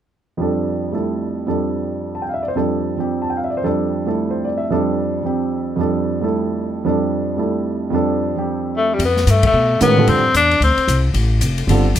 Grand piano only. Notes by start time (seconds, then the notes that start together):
0.37 F2 F3 G3 D4
0.42 A4
0.92 G3 A3 E4 A4
1.47 F2 F3 G3 D4 A4
2.15 A5
2.22 G5
2.29 F5
2.34 E5
2.43 D5
2.48 C5
2.55 F2 F3 G3 D4 A4
2.97 F3 C4 G4
3.22 A5
3.30 G5
3.37 F5
3.44 E5
3.50 D5
3.57 C5
3.63 F2 F3 G3 D4 A4
4.06 G3 A3 E4 A4
4.30 C5
4.44 D5
4.58 E5
4.70 F2 F3 G3 D4 A4
5.23 F3 C4 G4
5.76 F2 F3 G3 D4
5.81 A4
6.21 G3 A3 E4 A4
6.84 F2 F3 G3 D4 A4
7.37 G3 A3 E4 A4
7.90 F2 F3 G3 D4
7.95 A4
8.36 F3 C4 G4
9.81 D#3 G#3 C#4 F#4 A#4
9.97 D3 G3 C4 F4 A4
11.69 D3 G3 C4 F4 A4